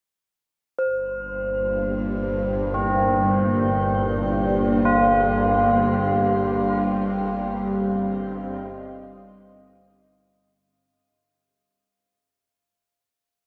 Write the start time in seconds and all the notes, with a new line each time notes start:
0.79 G1 G2 A#3 C5
2.74 C4 D5
2.99 G4
4.85 F4
5.64 G3
6.32 C4
7.85 D#5